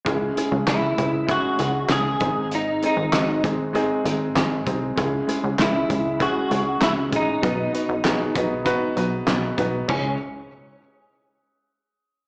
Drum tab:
CC |--------|--------|--------|--------|
HH |xxxxxxxx|xxxxxxxx|xxxxxxxx|xxxxxxxx|
CP |--x---x-|--x---x-|--x---x-|--x---x-|
SD |--o---o-|--o---o-|--o---o-|--o---o-|
BD |o--oo--o|---o---o|o--oo--o|o--oo--o|

CC |x-------|
HH |--------|
CP |--------|
SD |--------|
BD |o-------|